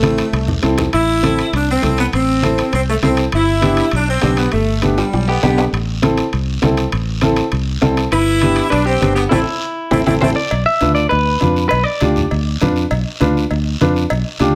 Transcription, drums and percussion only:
0.03 high conga medium
0.03 high timbale medium
0.03 short guiro medium
0.18 high timbale medium
0.18 short guiro medium
0.33 high timbale medium
0.33 long guiro medium
0.48 low conga medium
0.63 high timbale medium
0.63 short guiro medium
0.78 low conga medium
0.78 high timbale medium
0.78 short guiro medium
0.93 high timbale medium
0.93 long guiro medium
1.23 high conga medium
1.23 high timbale medium
1.23 short guiro medium
1.39 high timbale medium
1.39 short guiro medium
1.53 high conga soft
1.53 high timbale medium
1.53 long guiro medium
1.83 high conga medium
1.83 high timbale medium
1.83 short guiro medium
1.98 high timbale medium
1.98 short guiro medium
2.13 high conga soft
2.13 high timbale medium
2.13 long guiro medium
2.43 high conga medium
2.43 high timbale medium
2.43 short guiro medium
2.58 high timbale medium
2.58 short guiro medium
2.73 high timbale medium
2.73 long guiro medium
3.03 high conga medium
3.03 high timbale medium
3.03 short guiro medium
3.17 high timbale medium
3.17 short guiro medium
3.32 high conga soft
3.32 high timbale medium
3.32 long guiro medium
3.62 high conga medium
3.62 high timbale medium
3.62 short guiro medium
3.77 high timbale medium
3.77 short guiro medium
3.91 high conga soft
3.91 high timbale medium
3.91 long guiro medium
4.21 high conga medium
4.21 high timbale medium
4.21 low timbale medium
4.21 short guiro medium
4.37 high timbale medium
4.37 short guiro medium
4.52 high conga soft
4.52 high timbale medium
4.52 long guiro medium
4.82 high conga medium
4.82 high timbale medium
4.82 short guiro medium
4.98 high timbale medium
4.98 short guiro medium
5.13 high conga soft
5.13 high timbale medium
5.13 long guiro medium
5.28 low timbale medium
5.43 high conga medium
5.43 low timbale medium
5.43 short guiro medium
5.58 low timbale medium
5.58 short guiro medium
5.73 high conga soft
5.73 high timbale medium
5.73 long guiro medium
6.03 high conga medium
6.03 high timbale medium
6.03 short guiro medium
6.17 high timbale medium
6.17 short guiro medium
6.33 high timbale medium
6.33 long guiro medium
6.62 high conga medium
6.62 high timbale medium
6.62 low timbale medium
6.62 short guiro medium
6.77 high timbale medium
6.77 short guiro medium
6.92 high conga soft
6.92 high timbale medium
6.92 long guiro medium
7.21 high conga medium
7.21 high timbale medium
7.21 short guiro medium
7.36 high timbale medium
7.36 short guiro medium
7.52 high conga soft
7.52 high timbale medium
7.52 long guiro medium
7.82 high conga medium
7.82 high timbale medium
7.82 low timbale medium
7.82 short guiro medium
7.97 high timbale medium
7.97 short guiro medium
8.12 high timbale medium
8.12 long guiro medium
8.41 high conga medium
8.41 high timbale medium
8.41 short guiro medium
8.56 high timbale medium
8.56 short guiro medium
8.72 high conga soft
8.72 high timbale medium
8.72 long guiro medium
9.01 high conga medium
9.01 high timbale medium
9.01 short guiro medium
9.17 high timbale medium
9.17 short guiro medium
9.31 high conga loud
9.31 high timbale loud
9.31 long guiro medium
9.91 high conga medium
9.91 high timbale medium
9.91 long guiro loud
10.06 high conga medium
10.06 high timbale medium
10.06 long guiro medium
10.21 high conga loud
10.21 high timbale medium
10.21 long guiro medium
10.51 cowbell loud
10.51 high conga soft
10.51 long guiro medium
10.81 cowbell medium
10.81 high conga medium
10.81 short guiro medium
10.96 short guiro medium
11.11 cowbell medium
11.11 high conga soft
11.11 long guiro medium
11.40 cowbell medium
11.40 high conga medium
11.40 short guiro medium
11.56 short guiro medium
11.71 cowbell loud
11.71 high conga soft
11.71 long guiro medium
12.01 cowbell medium
12.01 high conga medium
12.01 short guiro medium
12.16 low conga medium
12.16 short guiro medium
12.31 cowbell medium
12.31 high conga soft
12.31 long guiro medium
12.61 cowbell medium
12.61 high conga medium
12.61 low conga medium
12.61 short guiro medium
12.76 short guiro medium
12.91 cowbell loud
12.91 high conga soft
12.91 long guiro medium
13.21 cowbell medium
13.21 high conga medium
13.21 short guiro medium
13.37 short guiro medium
13.51 cowbell medium
13.51 high conga soft
13.51 long guiro medium
13.81 cowbell medium
13.81 high conga medium
13.81 short guiro medium
13.96 short guiro medium
14.10 cowbell loud
14.10 high conga soft
14.10 long guiro medium
14.40 cowbell medium
14.40 high conga medium
14.40 short guiro medium

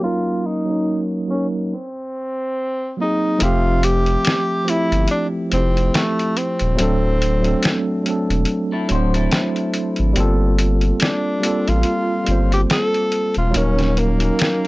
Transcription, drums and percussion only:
3.40 closed hi-hat medium
3.83 closed hi-hat medium
4.06 closed hi-hat soft
4.25 finger snap medium
4.25 snare loud
4.25 closed hi-hat medium
4.68 closed hi-hat medium
4.92 closed hi-hat soft
5.08 closed hi-hat medium
5.52 closed hi-hat medium
5.77 closed hi-hat soft
5.94 finger snap loud
5.94 snare loud
5.94 closed hi-hat medium
6.19 closed hi-hat soft
6.37 closed hi-hat medium
6.59 closed hi-hat soft
6.79 closed hi-hat medium
7.22 closed hi-hat medium
7.44 closed hi-hat medium
7.63 finger snap medium
7.63 snare loud
7.63 closed hi-hat medium
8.06 closed hi-hat medium
8.30 closed hi-hat soft
8.45 closed hi-hat medium
8.89 closed hi-hat medium
9.14 closed hi-hat soft
9.31 finger snap loud
9.31 snare loud
9.31 closed hi-hat medium
9.56 closed hi-hat soft
9.74 closed hi-hat medium
9.96 closed hi-hat soft
10.16 closed hi-hat medium
10.59 closed hi-hat medium
10.81 closed hi-hat medium
11.00 finger snap medium
11.00 snare loud
11.00 closed hi-hat medium
11.43 closed hi-hat medium
11.68 closed hi-hat soft
11.83 closed hi-hat medium
12.26 closed hi-hat medium
12.52 closed hi-hat soft
12.70 finger snap loud
12.70 snare loud
12.70 closed hi-hat medium
12.94 closed hi-hat soft
13.12 closed hi-hat medium
13.34 closed hi-hat soft
13.54 closed hi-hat medium
13.79 snare soft
13.79 closed hi-hat soft
13.97 closed hi-hat medium
14.20 closed hi-hat medium
14.39 finger snap medium
14.39 snare loud
14.39 closed hi-hat medium

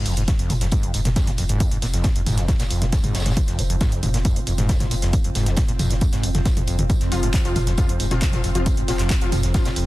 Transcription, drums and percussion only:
0.06 open hi-hat loud
0.06 tambourine medium
0.17 closed hi-hat medium
0.28 kick loud
0.28 snare loud
0.28 closed hi-hat medium
0.28 tambourine medium
0.39 closed hi-hat medium
0.50 mid tom medium
0.50 open hi-hat medium
0.50 tambourine medium
0.61 snare soft
0.61 closed hi-hat medium
0.72 kick loud
0.72 closed hi-hat medium
0.72 tambourine medium
0.83 closed hi-hat medium
0.94 open hi-hat loud
0.94 tambourine medium
1.05 snare soft
1.05 closed hi-hat medium
1.05 mid tom medium
1.16 kick loud
1.16 snare loud
1.16 closed hi-hat loud
1.16 tambourine medium
1.27 snare medium
1.27 closed hi-hat medium
1.27 mid tom medium
1.38 open hi-hat medium
1.38 tambourine medium
1.49 closed hi-hat medium
1.60 kick loud
1.60 closed hi-hat loud
1.60 tambourine medium
1.71 closed hi-hat medium
1.82 snare soft
1.82 open hi-hat loud
1.82 tambourine medium
1.93 snare soft
1.93 closed hi-hat medium
2.04 kick loud
2.04 snare loud
2.04 closed hi-hat loud
2.04 tambourine medium
2.16 closed hi-hat medium
2.26 mid tom medium
2.26 open hi-hat loud
2.26 tambourine medium
2.37 snare soft
2.37 closed hi-hat medium
2.48 kick loud
2.48 snare loud
2.48 closed hi-hat loud
2.48 tambourine medium
2.59 snare medium
2.59 closed hi-hat medium
2.59 tambourine medium
2.71 open hi-hat loud
2.71 tambourine medium
2.82 snare soft
2.82 closed hi-hat medium
2.82 mid tom medium
2.92 kick loud
2.92 snare loud
2.92 closed hi-hat medium
2.92 tambourine medium
3.04 closed hi-hat medium
3.04 mid tom medium
3.14 snare medium
3.14 open hi-hat loud
3.14 tambourine medium
3.20 snare loud
3.20 tambourine medium
3.26 snare medium
3.26 closed hi-hat medium
3.26 mid tom medium
3.26 tambourine medium
3.31 snare loud
3.31 tambourine medium
3.37 kick loud
3.37 closed hi-hat loud
3.37 tambourine medium
3.48 snare soft
3.48 closed hi-hat medium
3.59 open hi-hat loud
3.59 tambourine medium
3.70 closed hi-hat medium
3.81 kick loud
3.81 snare loud
3.81 closed hi-hat medium
3.81 tambourine medium
3.92 closed hi-hat medium
4.03 mid tom medium
4.03 open hi-hat loud
4.03 tambourine medium
4.14 snare medium
4.14 closed hi-hat medium
4.25 kick loud
4.25 closed hi-hat medium
4.25 tambourine medium
4.36 closed hi-hat medium
4.47 open hi-hat loud
4.47 tambourine medium
4.58 snare soft
4.58 closed hi-hat medium
4.58 mid tom medium
4.69 kick loud
4.69 snare loud
4.69 closed hi-hat loud
4.69 tambourine medium
4.80 snare medium
4.80 closed hi-hat medium
4.80 mid tom medium
4.91 open hi-hat loud
4.91 tambourine medium
5.02 snare medium
5.02 closed hi-hat medium
5.13 kick loud
5.13 closed hi-hat medium
5.13 tambourine medium
5.24 closed hi-hat medium
5.35 snare medium
5.35 open hi-hat loud
5.35 tambourine medium
5.46 snare soft
5.46 closed hi-hat soft
5.57 kick loud
5.57 snare loud
5.57 closed hi-hat medium
5.57 tambourine loud
5.68 closed hi-hat soft
5.79 mid tom medium
5.79 open hi-hat medium
5.79 tambourine medium
5.91 snare soft
5.91 closed hi-hat medium
6.01 kick loud
6.01 closed hi-hat medium
6.01 tambourine medium
6.12 snare medium
6.12 closed hi-hat medium
6.23 open hi-hat loud
6.23 tambourine medium
6.35 snare soft
6.35 closed hi-hat medium
6.35 mid tom medium
6.45 kick loud
6.45 snare loud
6.45 closed hi-hat medium
6.45 tambourine medium
6.57 closed hi-hat soft
6.57 mid tom medium
6.67 open hi-hat medium
6.67 tambourine medium
6.79 closed hi-hat soft
6.79 mid tom medium
6.90 kick loud
6.90 closed hi-hat medium
6.90 tambourine medium
7.01 snare soft
7.01 closed hi-hat medium
7.12 open hi-hat loud
7.12 tambourine medium
7.23 closed hi-hat medium
7.34 kick loud
7.34 snare loud
7.34 clap loud
7.34 closed hi-hat medium
7.34 tambourine medium
7.45 closed hi-hat soft
7.56 mid tom loud
7.56 open hi-hat medium
7.56 tambourine medium
7.67 snare medium
7.67 closed hi-hat soft
7.78 kick loud
7.78 closed hi-hat medium
7.78 tambourine medium
7.89 closed hi-hat medium
8.00 open hi-hat loud
8.00 tambourine medium
8.11 snare soft
8.11 closed hi-hat soft
8.11 mid tom medium
8.22 kick loud
8.22 snare loud
8.22 clap loud
8.22 closed hi-hat medium
8.22 tambourine medium
8.33 snare medium
8.33 closed hi-hat soft
8.33 mid tom medium
8.44 open hi-hat medium
8.44 tambourine medium
8.55 closed hi-hat medium
8.66 kick loud
8.66 closed hi-hat medium
8.66 tambourine medium
8.77 closed hi-hat medium
8.88 snare medium
8.88 open hi-hat loud
8.88 tambourine medium
8.99 snare soft
8.99 clap soft
8.99 closed hi-hat soft
9.10 kick loud
9.10 snare loud
9.10 clap loud
9.10 closed hi-hat medium
9.10 tambourine medium
9.21 closed hi-hat soft
9.32 mid tom loud
9.32 open hi-hat medium
9.32 tambourine medium
9.43 snare soft
9.43 closed hi-hat soft
9.54 kick loud
9.54 snare loud
9.54 closed hi-hat medium
9.54 tambourine medium
9.65 snare loud
9.65 closed hi-hat soft
9.65 tambourine medium
9.76 open hi-hat loud
9.76 tambourine medium

